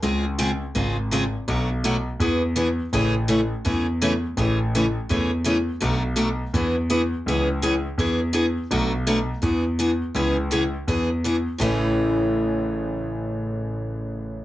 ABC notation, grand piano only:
X:1
M:4/4
L:1/8
Q:"Swing" 1/4=166
K:A
V:1 name="Grand piano" clef=bass
C,,4 G,,,4 | B,,,4 E,,4 | A,,,4 E,,4 | A,,,4 E,,4 |
B,,,4 E,,4 | C,,4 E,,4 | B,,,4 E,,4 | C,,4 E,,4 |
A,,,8- | A,,,8 |]